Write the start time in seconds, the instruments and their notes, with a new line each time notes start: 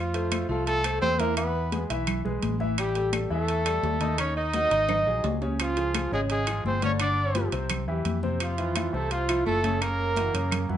Already playing: fingered electric bass F2, tenor saxophone F3
0.00 trumpet F4
0.14 grand piano A3 A4 C5, high timbale
0.31 grand piano A3 A4 C5, high conga, high timbale, claves
0.49 fingered electric bass C2, grand piano F3 F4 F5, tenor saxophone A3, trumpet A4, high conga
0.66 tenor saxophone A3, trumpet A4, high conga, high timbale
0.84 grand piano A3 A4 C5, high conga, high timbale, claves
1.01 fingered electric bass E2, tenor saxophone C4, trumpet C5, high conga, low timbale
1.19 grand piano E3 E4 E5, tenor saxophone A#3, trumpet A#4, high conga, high timbale
1.37 grand piano E3 E4 E5, tenor saxophone B3, trumpet B4, high timbale, claves
1.55 high conga
1.72 grand piano G#3 G#4 B4, high conga, high timbale
1.90 fingered electric bass B1, grand piano E3 E4 E5, high conga, high timbale
2.07 high conga, low conga, high timbale, claves
2.25 fingered electric bass B1, grand piano G#3 G#4 B4, high conga, low conga
2.43 fingered electric bass A1, high conga, high timbale
2.60 grand piano E3 E4 E5, high conga
2.78 tenor saxophone G3, trumpet G4, high timbale, claves
2.95 grand piano G3 G4 A4, high conga, high timbale
3.13 grand piano G3 G4 A4, high conga, high timbale, claves
3.30 fingered electric bass E2, grand piano E3 E4 E5, tenor saxophone A3, trumpet A4, high conga
3.48 high conga, high timbale
3.66 grand piano G3 G4 A4, high conga, high timbale, claves
3.83 fingered electric bass D#2, high conga, low timbale
4.01 grand piano D#3 D#4 D#5, high conga, high timbale
4.18 grand piano D#3 D#4 D#5, tenor saxophone C#4, trumpet C#5, high conga, high timbale, claves
4.36 tenor saxophone D#4, trumpet D#5, high conga
4.54 grand piano F#3 F#4 A#4, high conga, high timbale
4.71 fingered electric bass G#1, grand piano D#3 D#4 D#5, high timbale
4.89 high conga, low conga, high timbale, claves
5.06 fingered electric bass A#1, grand piano F#3 F#4 G#4, high conga
5.24 fingered electric bass C#2, high conga, low timbale
5.41 grand piano C#3 C#4 C#5, high conga, low timbale
5.60 tenor saxophone F3, trumpet F4, high timbale, claves
5.76 grand piano F3 F4 G#4, high conga, high timbale
5.94 grand piano F3 F4 G#4, high conga, high timbale, claves
6.12 fingered electric bass G#1, grand piano C#3 C#4 C#5, tenor saxophone G#3, trumpet G#4, high conga
6.30 tenor saxophone G#3, trumpet G#4, high conga, high timbale
6.47 grand piano F3 F4 G#4, high conga, high timbale, claves
6.65 fingered electric bass G1, tenor saxophone C4, trumpet C5, high conga
6.82 grand piano D3 D4 D5, tenor saxophone C#4, trumpet C#5, high conga, high timbale
7.00 grand piano D3 D4 D5, tenor saxophone D4, trumpet D5, high timbale, claves
7.18 high conga
7.35 grand piano F3 F4 G4, high conga, high timbale
7.52 fingered electric bass C2, grand piano C3 C4 C5, high conga, high timbale
7.70 high conga, low conga, high timbale, claves
7.88 fingered electric bass E2, grand piano E3 E4 G4, high conga
8.05 fingered electric bass F2, high conga, high timbale
8.23 grand piano C3 C4 C5, high conga
8.40 tenor saxophone F3, trumpet F4, high timbale, claves
8.58 grand piano E3 E4 F4, high conga, high timbale
8.76 grand piano E3 E4 F4, high conga, high timbale, claves
8.93 fingered electric bass C2, grand piano C3 C4 C5, tenor saxophone A3, trumpet A4, high conga
9.11 tenor saxophone F3, trumpet F4, high conga, high timbale
9.29 grand piano F3 E4 F4, high conga, high timbale, claves
9.46 fingered electric bass F#1, tenor saxophone A3, trumpet A4, high conga
9.64 grand piano C#3 C#4 C#5, high conga, high timbale
9.81 grand piano C#3 C#4 C#5, tenor saxophone A#3, trumpet A#4, high timbale, claves
9.99 high conga
10.16 grand piano E3 E4 F#4, high conga, high timbale
10.34 fingered electric bass F#2, grand piano C#3 C#4 C#5, high conga, high timbale
10.52 high conga, low conga, high timbale, claves
10.69 fingered electric bass F#2, grand piano E3 E4 F#4, high conga, low conga